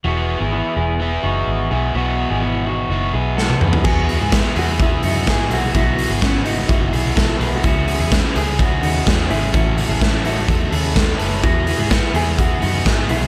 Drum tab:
CC |----------------|----------------|x---------------|----------------|
HH |----------------|----------------|--o-x-o-x-o-x-o-|x-o-x-o-x-o-x-o-|
SD |----------------|------------o---|----o-------o---|----o-------o---|
T1 |----------------|-------------o--|----------------|----------------|
T2 |----------------|--------------o-|----------------|----------------|
FT |----------------|---------------o|----------------|----------------|
BD |----------------|----------------|o---o---o---o---|o---o---o---o---|

CC |----------------|----------------|----------------|
HH |x-o-x-o-x-o-x-o-|x-o-x-o-x-o-x-o-|x-o-x-o-x-o-x-o-|
SD |----o-------o---|----o-------o---|----o-------o---|
T1 |----------------|----------------|----------------|
T2 |----------------|----------------|----------------|
FT |----------------|----------------|----------------|
BD |o---o---o---o---|o---o---o---o---|o---o---o---o---|